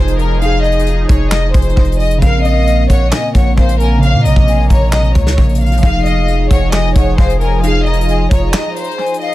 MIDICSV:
0, 0, Header, 1, 7, 480
1, 0, Start_track
1, 0, Key_signature, -5, "minor"
1, 0, Tempo, 451128
1, 444, Time_signature, 4, 2, 24, 8
1, 9944, End_track
2, 0, Start_track
2, 0, Title_t, "Flute"
2, 0, Program_c, 0, 73
2, 2364, Note_on_c, 0, 77, 107
2, 3041, Note_off_c, 0, 77, 0
2, 3083, Note_on_c, 0, 78, 85
2, 3311, Note_off_c, 0, 78, 0
2, 3325, Note_on_c, 0, 80, 89
2, 3552, Note_off_c, 0, 80, 0
2, 3564, Note_on_c, 0, 78, 100
2, 3792, Note_off_c, 0, 78, 0
2, 3805, Note_on_c, 0, 77, 81
2, 4032, Note_off_c, 0, 77, 0
2, 4044, Note_on_c, 0, 80, 82
2, 4272, Note_off_c, 0, 80, 0
2, 4523, Note_on_c, 0, 82, 81
2, 4751, Note_off_c, 0, 82, 0
2, 4765, Note_on_c, 0, 80, 90
2, 4992, Note_off_c, 0, 80, 0
2, 5003, Note_on_c, 0, 82, 88
2, 5681, Note_off_c, 0, 82, 0
2, 6203, Note_on_c, 0, 77, 118
2, 6881, Note_off_c, 0, 77, 0
2, 6924, Note_on_c, 0, 78, 81
2, 7152, Note_off_c, 0, 78, 0
2, 7164, Note_on_c, 0, 80, 99
2, 7392, Note_off_c, 0, 80, 0
2, 7406, Note_on_c, 0, 78, 80
2, 7633, Note_off_c, 0, 78, 0
2, 7645, Note_on_c, 0, 77, 84
2, 7873, Note_off_c, 0, 77, 0
2, 7886, Note_on_c, 0, 80, 86
2, 8113, Note_off_c, 0, 80, 0
2, 8365, Note_on_c, 0, 82, 78
2, 8592, Note_off_c, 0, 82, 0
2, 8605, Note_on_c, 0, 80, 80
2, 8832, Note_off_c, 0, 80, 0
2, 8845, Note_on_c, 0, 82, 81
2, 9522, Note_off_c, 0, 82, 0
2, 9565, Note_on_c, 0, 80, 82
2, 9792, Note_off_c, 0, 80, 0
2, 9804, Note_on_c, 0, 77, 93
2, 9944, Note_off_c, 0, 77, 0
2, 9944, End_track
3, 0, Start_track
3, 0, Title_t, "Violin section"
3, 0, Program_c, 1, 48
3, 0, Note_on_c, 1, 72, 87
3, 189, Note_off_c, 1, 72, 0
3, 205, Note_on_c, 1, 70, 81
3, 431, Note_off_c, 1, 70, 0
3, 444, Note_on_c, 1, 77, 108
3, 670, Note_off_c, 1, 77, 0
3, 683, Note_on_c, 1, 75, 82
3, 1135, Note_off_c, 1, 75, 0
3, 1164, Note_on_c, 1, 73, 84
3, 1391, Note_off_c, 1, 73, 0
3, 1397, Note_on_c, 1, 75, 87
3, 1627, Note_off_c, 1, 75, 0
3, 1639, Note_on_c, 1, 72, 84
3, 2092, Note_off_c, 1, 72, 0
3, 2118, Note_on_c, 1, 75, 76
3, 2347, Note_off_c, 1, 75, 0
3, 2363, Note_on_c, 1, 77, 108
3, 2590, Note_off_c, 1, 77, 0
3, 2605, Note_on_c, 1, 75, 87
3, 3056, Note_off_c, 1, 75, 0
3, 3084, Note_on_c, 1, 73, 97
3, 3311, Note_off_c, 1, 73, 0
3, 3322, Note_on_c, 1, 75, 81
3, 3549, Note_off_c, 1, 75, 0
3, 3568, Note_on_c, 1, 73, 74
3, 3793, Note_off_c, 1, 73, 0
3, 3814, Note_on_c, 1, 72, 92
3, 4036, Note_off_c, 1, 72, 0
3, 4046, Note_on_c, 1, 70, 80
3, 4272, Note_off_c, 1, 70, 0
3, 4290, Note_on_c, 1, 77, 109
3, 4513, Note_off_c, 1, 77, 0
3, 4530, Note_on_c, 1, 75, 82
3, 4978, Note_off_c, 1, 75, 0
3, 4999, Note_on_c, 1, 73, 83
3, 5228, Note_off_c, 1, 73, 0
3, 5247, Note_on_c, 1, 75, 92
3, 5472, Note_off_c, 1, 75, 0
3, 5484, Note_on_c, 1, 73, 77
3, 5935, Note_off_c, 1, 73, 0
3, 5971, Note_on_c, 1, 77, 75
3, 6186, Note_off_c, 1, 77, 0
3, 6198, Note_on_c, 1, 77, 106
3, 6428, Note_off_c, 1, 77, 0
3, 6442, Note_on_c, 1, 75, 89
3, 6894, Note_off_c, 1, 75, 0
3, 6922, Note_on_c, 1, 73, 94
3, 7149, Note_off_c, 1, 73, 0
3, 7156, Note_on_c, 1, 75, 90
3, 7386, Note_off_c, 1, 75, 0
3, 7404, Note_on_c, 1, 73, 89
3, 7630, Note_off_c, 1, 73, 0
3, 7641, Note_on_c, 1, 72, 86
3, 7869, Note_off_c, 1, 72, 0
3, 7884, Note_on_c, 1, 70, 77
3, 8111, Note_off_c, 1, 70, 0
3, 8123, Note_on_c, 1, 77, 105
3, 8350, Note_off_c, 1, 77, 0
3, 8362, Note_on_c, 1, 75, 81
3, 8814, Note_off_c, 1, 75, 0
3, 8846, Note_on_c, 1, 73, 86
3, 9072, Note_off_c, 1, 73, 0
3, 9076, Note_on_c, 1, 75, 83
3, 9306, Note_off_c, 1, 75, 0
3, 9320, Note_on_c, 1, 72, 85
3, 9773, Note_off_c, 1, 72, 0
3, 9796, Note_on_c, 1, 75, 75
3, 9944, Note_off_c, 1, 75, 0
3, 9944, End_track
4, 0, Start_track
4, 0, Title_t, "Analog synth pad"
4, 0, Program_c, 2, 89
4, 0, Note_on_c, 2, 53, 85
4, 0, Note_on_c, 2, 63, 79
4, 0, Note_on_c, 2, 68, 94
4, 2326, Note_off_c, 2, 53, 0
4, 2326, Note_off_c, 2, 63, 0
4, 2326, Note_off_c, 2, 68, 0
4, 2365, Note_on_c, 2, 46, 84
4, 2365, Note_on_c, 2, 58, 78
4, 6166, Note_off_c, 2, 46, 0
4, 6166, Note_off_c, 2, 58, 0
4, 6202, Note_on_c, 2, 53, 84
4, 6203, Note_on_c, 2, 63, 79
4, 6203, Note_on_c, 2, 68, 94
4, 8104, Note_off_c, 2, 63, 0
4, 8125, Note_on_c, 2, 65, 78
4, 9944, Note_off_c, 2, 53, 0
4, 9944, Note_off_c, 2, 65, 0
4, 9944, Note_off_c, 2, 68, 0
4, 9944, End_track
5, 0, Start_track
5, 0, Title_t, "Synth keys"
5, 0, Program_c, 3, 88
5, 0, Control_c, 3, 64, 127
5, 0, Note_on_c, 3, 53, 69
5, 0, Note_on_c, 3, 63, 68
5, 0, Note_on_c, 3, 68, 77
5, 381, Note_off_c, 3, 53, 0
5, 399, Note_on_c, 3, 53, 65
5, 403, Note_off_c, 3, 63, 0
5, 425, Note_off_c, 3, 68, 0
5, 443, Note_on_c, 3, 63, 61
5, 486, Note_on_c, 3, 68, 72
5, 2302, Note_off_c, 3, 53, 0
5, 2321, Note_on_c, 3, 49, 66
5, 2325, Note_off_c, 3, 63, 0
5, 2347, Note_off_c, 3, 68, 0
5, 2364, Note_on_c, 3, 60, 62
5, 2374, Control_c, 3, 64, 0
5, 2408, Note_on_c, 3, 70, 73
5, 2553, Control_c, 3, 64, 127
5, 4223, Note_off_c, 3, 49, 0
5, 4236, Note_on_c, 3, 49, 69
5, 4246, Note_off_c, 3, 60, 0
5, 4268, Note_off_c, 3, 70, 0
5, 4280, Note_on_c, 3, 48, 63
5, 4324, Note_on_c, 3, 73, 80
5, 6141, Note_off_c, 3, 49, 0
5, 6155, Note_on_c, 3, 53, 68
5, 6163, Note_off_c, 3, 48, 0
5, 6186, Note_off_c, 3, 73, 0
5, 6199, Note_on_c, 3, 63, 67
5, 6215, Control_c, 3, 64, 0
5, 6241, Note_on_c, 3, 68, 81
5, 6427, Control_c, 3, 64, 127
5, 8060, Note_off_c, 3, 53, 0
5, 8080, Note_on_c, 3, 53, 64
5, 8083, Note_off_c, 3, 63, 0
5, 8104, Note_off_c, 3, 68, 0
5, 8124, Note_on_c, 3, 63, 62
5, 8167, Note_on_c, 3, 68, 76
5, 9944, Note_off_c, 3, 53, 0
5, 9944, Note_off_c, 3, 63, 0
5, 9944, Note_off_c, 3, 68, 0
5, 9944, End_track
6, 0, Start_track
6, 0, Title_t, "808-style bass"
6, 0, Program_c, 4, 38
6, 0, Note_on_c, 4, 29, 108
6, 1121, Note_off_c, 4, 29, 0
6, 1163, Note_on_c, 4, 29, 107
6, 1624, Note_off_c, 4, 29, 0
6, 1642, Note_on_c, 4, 29, 106
6, 1873, Note_off_c, 4, 29, 0
6, 1883, Note_on_c, 4, 29, 108
6, 2344, Note_off_c, 4, 29, 0
6, 2363, Note_on_c, 4, 34, 115
6, 3055, Note_off_c, 4, 34, 0
6, 3084, Note_on_c, 4, 34, 109
6, 3314, Note_off_c, 4, 34, 0
6, 3563, Note_on_c, 4, 34, 108
6, 3794, Note_off_c, 4, 34, 0
6, 3804, Note_on_c, 4, 34, 107
6, 4403, Note_on_c, 4, 46, 100
6, 4419, Note_off_c, 4, 34, 0
6, 4523, Note_on_c, 4, 34, 99
6, 4539, Note_off_c, 4, 46, 0
6, 4637, Note_off_c, 4, 34, 0
6, 4642, Note_on_c, 4, 34, 106
6, 4988, Note_off_c, 4, 34, 0
6, 5004, Note_on_c, 4, 34, 109
6, 5464, Note_off_c, 4, 34, 0
6, 5483, Note_on_c, 4, 37, 105
6, 5714, Note_off_c, 4, 37, 0
6, 5723, Note_on_c, 4, 34, 111
6, 6184, Note_off_c, 4, 34, 0
6, 6203, Note_on_c, 4, 29, 120
6, 6895, Note_off_c, 4, 29, 0
6, 6923, Note_on_c, 4, 29, 106
6, 7384, Note_off_c, 4, 29, 0
6, 7402, Note_on_c, 4, 29, 104
6, 7633, Note_off_c, 4, 29, 0
6, 7643, Note_on_c, 4, 29, 109
6, 8801, Note_off_c, 4, 29, 0
6, 8844, Note_on_c, 4, 29, 104
6, 9074, Note_off_c, 4, 29, 0
6, 9944, End_track
7, 0, Start_track
7, 0, Title_t, "Drums"
7, 83, Note_on_c, 9, 42, 67
7, 189, Note_off_c, 9, 42, 0
7, 203, Note_on_c, 9, 42, 72
7, 310, Note_off_c, 9, 42, 0
7, 442, Note_on_c, 9, 42, 80
7, 549, Note_off_c, 9, 42, 0
7, 683, Note_on_c, 9, 42, 47
7, 762, Note_off_c, 9, 42, 0
7, 762, Note_on_c, 9, 42, 63
7, 843, Note_off_c, 9, 42, 0
7, 843, Note_on_c, 9, 42, 77
7, 922, Note_off_c, 9, 42, 0
7, 922, Note_on_c, 9, 42, 75
7, 1029, Note_off_c, 9, 42, 0
7, 1162, Note_on_c, 9, 42, 93
7, 1163, Note_on_c, 9, 36, 99
7, 1269, Note_off_c, 9, 42, 0
7, 1270, Note_off_c, 9, 36, 0
7, 1400, Note_on_c, 9, 39, 98
7, 1402, Note_on_c, 9, 38, 120
7, 1507, Note_off_c, 9, 39, 0
7, 1509, Note_off_c, 9, 38, 0
7, 1642, Note_on_c, 9, 36, 103
7, 1642, Note_on_c, 9, 42, 74
7, 1723, Note_off_c, 9, 42, 0
7, 1723, Note_on_c, 9, 42, 62
7, 1749, Note_off_c, 9, 36, 0
7, 1803, Note_off_c, 9, 42, 0
7, 1803, Note_on_c, 9, 42, 45
7, 1883, Note_off_c, 9, 42, 0
7, 1883, Note_on_c, 9, 36, 96
7, 1883, Note_on_c, 9, 42, 38
7, 1963, Note_off_c, 9, 42, 0
7, 1963, Note_on_c, 9, 42, 54
7, 1990, Note_off_c, 9, 36, 0
7, 2043, Note_off_c, 9, 42, 0
7, 2043, Note_on_c, 9, 42, 67
7, 2124, Note_off_c, 9, 42, 0
7, 2124, Note_on_c, 9, 42, 45
7, 2124, Note_on_c, 9, 46, 55
7, 2230, Note_off_c, 9, 42, 0
7, 2230, Note_off_c, 9, 46, 0
7, 2243, Note_on_c, 9, 42, 77
7, 2349, Note_off_c, 9, 42, 0
7, 2364, Note_on_c, 9, 36, 109
7, 2364, Note_on_c, 9, 42, 81
7, 2470, Note_off_c, 9, 36, 0
7, 2470, Note_off_c, 9, 42, 0
7, 2604, Note_on_c, 9, 42, 71
7, 2710, Note_off_c, 9, 42, 0
7, 2843, Note_on_c, 9, 42, 75
7, 2950, Note_off_c, 9, 42, 0
7, 3083, Note_on_c, 9, 42, 91
7, 3084, Note_on_c, 9, 36, 96
7, 3190, Note_off_c, 9, 36, 0
7, 3190, Note_off_c, 9, 42, 0
7, 3322, Note_on_c, 9, 39, 92
7, 3324, Note_on_c, 9, 38, 124
7, 3429, Note_off_c, 9, 39, 0
7, 3431, Note_off_c, 9, 38, 0
7, 3563, Note_on_c, 9, 36, 101
7, 3564, Note_on_c, 9, 42, 77
7, 3669, Note_off_c, 9, 36, 0
7, 3670, Note_off_c, 9, 42, 0
7, 3804, Note_on_c, 9, 36, 98
7, 3804, Note_on_c, 9, 42, 40
7, 3910, Note_off_c, 9, 36, 0
7, 3910, Note_off_c, 9, 42, 0
7, 3924, Note_on_c, 9, 42, 67
7, 4031, Note_off_c, 9, 42, 0
7, 4044, Note_on_c, 9, 42, 76
7, 4151, Note_off_c, 9, 42, 0
7, 4284, Note_on_c, 9, 42, 85
7, 4390, Note_off_c, 9, 42, 0
7, 4524, Note_on_c, 9, 42, 74
7, 4630, Note_off_c, 9, 42, 0
7, 4643, Note_on_c, 9, 36, 93
7, 4749, Note_off_c, 9, 36, 0
7, 4764, Note_on_c, 9, 42, 77
7, 4871, Note_off_c, 9, 42, 0
7, 5004, Note_on_c, 9, 36, 97
7, 5004, Note_on_c, 9, 42, 89
7, 5110, Note_off_c, 9, 36, 0
7, 5110, Note_off_c, 9, 42, 0
7, 5242, Note_on_c, 9, 39, 99
7, 5244, Note_on_c, 9, 38, 124
7, 5348, Note_off_c, 9, 39, 0
7, 5350, Note_off_c, 9, 38, 0
7, 5364, Note_on_c, 9, 42, 47
7, 5470, Note_off_c, 9, 42, 0
7, 5483, Note_on_c, 9, 36, 104
7, 5484, Note_on_c, 9, 42, 75
7, 5589, Note_off_c, 9, 36, 0
7, 5590, Note_off_c, 9, 42, 0
7, 5603, Note_on_c, 9, 38, 68
7, 5710, Note_off_c, 9, 38, 0
7, 5723, Note_on_c, 9, 36, 97
7, 5723, Note_on_c, 9, 42, 39
7, 5783, Note_off_c, 9, 42, 0
7, 5783, Note_on_c, 9, 42, 48
7, 5830, Note_off_c, 9, 36, 0
7, 5843, Note_off_c, 9, 42, 0
7, 5843, Note_on_c, 9, 42, 56
7, 5903, Note_off_c, 9, 42, 0
7, 5903, Note_on_c, 9, 42, 66
7, 5964, Note_off_c, 9, 42, 0
7, 5964, Note_on_c, 9, 42, 46
7, 6024, Note_off_c, 9, 42, 0
7, 6024, Note_on_c, 9, 42, 56
7, 6083, Note_off_c, 9, 42, 0
7, 6083, Note_on_c, 9, 42, 65
7, 6143, Note_off_c, 9, 42, 0
7, 6143, Note_on_c, 9, 42, 75
7, 6202, Note_off_c, 9, 42, 0
7, 6202, Note_on_c, 9, 42, 81
7, 6203, Note_on_c, 9, 36, 113
7, 6309, Note_off_c, 9, 42, 0
7, 6310, Note_off_c, 9, 36, 0
7, 6443, Note_on_c, 9, 42, 75
7, 6549, Note_off_c, 9, 42, 0
7, 6682, Note_on_c, 9, 42, 78
7, 6789, Note_off_c, 9, 42, 0
7, 6922, Note_on_c, 9, 42, 89
7, 6923, Note_on_c, 9, 36, 98
7, 7028, Note_off_c, 9, 42, 0
7, 7030, Note_off_c, 9, 36, 0
7, 7160, Note_on_c, 9, 39, 97
7, 7162, Note_on_c, 9, 38, 122
7, 7266, Note_off_c, 9, 39, 0
7, 7268, Note_off_c, 9, 38, 0
7, 7402, Note_on_c, 9, 36, 105
7, 7402, Note_on_c, 9, 42, 79
7, 7508, Note_off_c, 9, 36, 0
7, 7508, Note_off_c, 9, 42, 0
7, 7642, Note_on_c, 9, 42, 38
7, 7643, Note_on_c, 9, 36, 99
7, 7748, Note_off_c, 9, 42, 0
7, 7749, Note_off_c, 9, 36, 0
7, 7762, Note_on_c, 9, 42, 67
7, 7869, Note_off_c, 9, 42, 0
7, 7882, Note_on_c, 9, 42, 74
7, 7989, Note_off_c, 9, 42, 0
7, 8122, Note_on_c, 9, 42, 81
7, 8229, Note_off_c, 9, 42, 0
7, 8363, Note_on_c, 9, 42, 45
7, 8443, Note_off_c, 9, 42, 0
7, 8443, Note_on_c, 9, 42, 62
7, 8522, Note_off_c, 9, 42, 0
7, 8522, Note_on_c, 9, 42, 75
7, 8602, Note_off_c, 9, 42, 0
7, 8602, Note_on_c, 9, 42, 77
7, 8709, Note_off_c, 9, 42, 0
7, 8843, Note_on_c, 9, 36, 100
7, 8843, Note_on_c, 9, 42, 89
7, 8949, Note_off_c, 9, 42, 0
7, 8950, Note_off_c, 9, 36, 0
7, 9081, Note_on_c, 9, 39, 98
7, 9083, Note_on_c, 9, 38, 123
7, 9188, Note_off_c, 9, 39, 0
7, 9190, Note_off_c, 9, 38, 0
7, 9324, Note_on_c, 9, 42, 79
7, 9403, Note_off_c, 9, 42, 0
7, 9403, Note_on_c, 9, 42, 60
7, 9484, Note_off_c, 9, 42, 0
7, 9484, Note_on_c, 9, 42, 46
7, 9564, Note_off_c, 9, 42, 0
7, 9564, Note_on_c, 9, 42, 38
7, 9644, Note_off_c, 9, 42, 0
7, 9644, Note_on_c, 9, 42, 53
7, 9723, Note_off_c, 9, 42, 0
7, 9723, Note_on_c, 9, 42, 65
7, 9803, Note_off_c, 9, 42, 0
7, 9803, Note_on_c, 9, 42, 45
7, 9909, Note_off_c, 9, 42, 0
7, 9944, End_track
0, 0, End_of_file